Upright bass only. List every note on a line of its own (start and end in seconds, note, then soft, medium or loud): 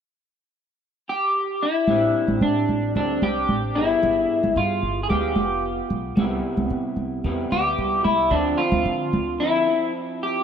1.87 2.09 A1 medium
2.28 2.39 A1 medium
2.41 2.63 A2 medium
2.69 2.90 A1 medium
2.95 3.17 D2 medium
3.22 3.43 C2 medium
3.48 3.76 A1 medium
3.76 3.98 G1 medium
4.03 4.24 G1 medium
4.43 4.54 G1 medium
4.56 4.78 G2 medium
4.82 5.04 G1 medium
5.10 5.32 D2 medium
5.35 5.79 F1 medium
5.90 6.12 B1 medium
6.17 6.39 C2 medium
6.57 6.68 C2 medium
6.70 6.93 C3 medium
6.96 7.19 C2 medium
7.24 7.47 E2 medium
7.52 7.74 D2 medium
7.78 8.01 C2 medium
8.05 8.27 C2 medium
8.31 8.54 D2 medium
8.72 8.84 D2 medium
8.85 9.14 D3 medium
9.13 9.35 D2 medium